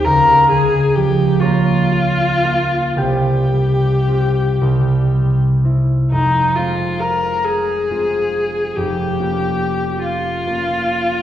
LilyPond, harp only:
<<
  \new Staff \with { instrumentName = "Harp" } { \time 6/8 \key f \minor \tempo 4. = 44 << { bes''4. des'''4 f''8 | g''2. | r2. | r2. | } \\ { <bes' des'' f''>4. <des'' bes''>4 f'8 | <g' c''>2.~ | <g' c''>2. | r2. | } >> }
  \new Staff \with { instrumentName = "Harp" } { \time 6/8 \key f \minor des,8 des8 f8 bes8 f'8 bes8 | c,8 g8 <c' f'>8 c,8 g8 <c' e'>8 | f,,8 <aes c' f'>4. <aes c' f'>4 | f,,8 <bes des' f'>4. <bes des' f'>4 | }
>>